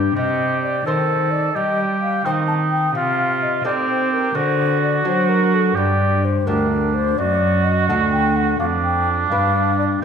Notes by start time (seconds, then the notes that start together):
Already playing: G2 D4 G4
0.16 C3 G4 D#5
0.62 D5
0.86 D#3 C4 A4 C5
1.31 D5
1.54 G3 G4 D#5
2.02 F5
2.25 D#3 C4 D#4 C5 G5
2.48 A5
2.72 G5
2.94 C3 F4 F5
3.43 D#5
3.64 C4 D#4 G4 A4 D5
3.88 C5
4.12 A#4
4.35 D3 F#4 C5
4.82 D5
5.05 F#3 D4 F#4 C5
5.29 A#4
5.54 A4
5.76 G2 G4 D5
6.25 C5
6.46 D2 D4 G4 A#4
6.94 C5
7.18 F#2 F#4 D5
7.64 D#5
7.88 D2 D4 A4 F#5
8.12 G5
8.36 F#5
8.59 F2 D4 F5
8.84 G5
9.30 G2 D4 B4 F5
9.79 D5